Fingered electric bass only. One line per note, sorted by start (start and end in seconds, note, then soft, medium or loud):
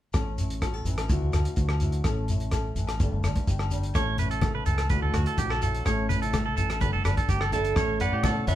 0.14 0.81 A1 medium
0.85 1.07 A1 medium
1.09 1.20 D2 medium
1.22 1.32 D2 medium
1.33 1.44 D2 medium
1.57 2.00 D2 medium
2.04 2.72 A1 medium
2.76 2.97 A1 medium
3.00 3.11 G1 medium
3.12 3.22 G1 medium
3.23 3.35 G1 medium
3.47 3.91 G1 medium
3.95 4.62 A1 medium
4.66 4.88 C#2 medium
4.90 5.01 D2 medium
5.02 5.13 D2 medium
5.14 5.25 D2 medium
5.38 5.82 A#1 medium
5.86 6.53 A1 medium
6.58 6.79 A1 medium
6.81 6.92 G1 medium
6.95 7.04 G1 medium
7.06 7.16 G1 medium
7.28 7.72 G1 medium
7.76 8.09 A1 medium
8.13 8.45 A2 medium
8.47 8.55 A1 medium